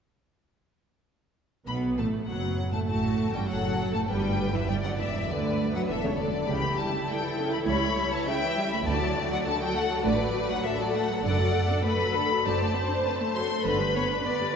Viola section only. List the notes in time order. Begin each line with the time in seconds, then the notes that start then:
1.67 B3
1.98 A3
2.28 F#3
2.72 A3
2.87 A3
3.33 G3
3.48 F#3
3.93 A3
4.09 G3
4.53 E3
4.68 G3
4.83 F#3
4.98 E3
5.28 D3
5.73 F#3
5.89 E3
6.04 C#3
6.20 D3
6.49 C#3 E4
6.63 E3
6.78 G3
6.93 A3
7.08 G3
7.22 E3
7.38 C#3
7.53 E3
7.67 G3
7.82 A3
7.97 G3
8.12 E3
8.26 C#3
8.41 E3
8.56 G3
8.71 A3
8.86 D3 F#4
9.01 F#3
9.16 A3
9.30 F#3
9.46 D3
9.60 F#3
9.75 A3
9.90 F#3
10.04 D3
10.20 F#3
10.35 A3
10.50 F#3
10.64 D3
10.80 F#3
10.95 A3
11.10 F#3
11.24 D3 A4
11.40 F#3
11.54 A3
11.70 D4
11.85 A3
12.02 F#3
12.16 D3
12.31 F#3
12.45 F#3 C5
12.61 A3
12.75 C4
12.90 D4
13.06 C4
13.20 A3
13.35 F#3
13.51 A3
13.65 D3 B4
13.79 G3
13.96 B3
14.10 D4
14.26 B3
14.41 G3